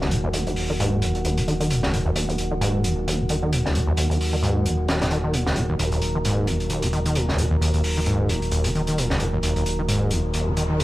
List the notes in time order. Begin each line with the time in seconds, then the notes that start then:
Already playing: D#1 D#3 F#3 A#3 F#4, impact
0.02 C#2, snare
0.11 C#3, closed hi-hat
0.24 D#2
0.33 D#2, closed hi-hat
0.47 D#2, closed hi-hat
0.56 open hi-hat
0.70 D#3
0.80 G#2, closed hi-hat
1.02 D#2, closed hi-hat
1.15 closed hi-hat
1.25 D#2, closed hi-hat
1.37 D#3, closed hi-hat
1.48 D#3, closed hi-hat
1.60 D#3, closed hi-hat
1.70 A#2, closed hi-hat
1.83 C#2, snare
1.93 C#3, closed hi-hat
2.05 D#2
2.15 D#2, closed hi-hat
2.29 D#2, closed hi-hat
2.38 closed hi-hat
2.51 D#3
2.61 G#2, closed hi-hat
2.84 D#2, closed hi-hat
3.07 D#2, closed hi-hat
3.20 D#3
3.29 D#3, closed hi-hat
3.42 D#3
3.52 A#2, closed hi-hat
3.65 C#2, snare
3.75 C#3, closed hi-hat
3.87 D#2
3.97 D#2, closed hi-hat
4.10 D#2, closed hi-hat
4.21 open hi-hat
4.33 D#3
4.43 G#2, closed hi-hat
4.66 D#2, closed hi-hat
4.88 D#2, snare, closed hi-hat
5.01 D#3, snare, closed hi-hat
5.11 D#3, closed hi-hat
5.24 D#3
5.33 A#2, closed hi-hat
5.46 C#2, snare
5.56 C#3, closed hi-hat
5.70 D#2
5.79 D#1 D#2 A#4, closed hi-hat
5.92 D#2, closed hi-hat
6.02 closed hi-hat
6.15 D#3
6.25 G#2, closed hi-hat
6.47 D#2, closed hi-hat
6.60 closed hi-hat
6.70 D#2, closed hi-hat
6.82 D#3, closed hi-hat
6.93 D#3, closed hi-hat
7.06 D#3, closed hi-hat
7.15 A#2, closed hi-hat
7.29 C#2, snare
7.38 C#3, closed hi-hat
7.51 D#2
7.61 D#2, closed hi-hat
7.74 D#2, closed hi-hat
7.84 open hi-hat
7.97 D#3
8.06 G#2, closed hi-hat
8.29 D#2, closed hi-hat
8.42 closed hi-hat
8.51 D#2, closed hi-hat
8.64 D#3, closed hi-hat
8.75 D#3, closed hi-hat
8.87 D#3, closed hi-hat
8.98 A#2, closed hi-hat
9.10 C#2, snare
9.20 C#3, closed hi-hat
9.33 D#2
9.43 D#2, closed hi-hat, riser
9.56 D#2, closed hi-hat
9.66 closed hi-hat
9.79 D#3
9.89 G#2, closed hi-hat
10.11 D#2, closed hi-hat
10.34 D#2, closed hi-hat
10.47 D#3
10.57 D#3, closed hi-hat
10.70 D#3
10.79 A#2, closed hi-hat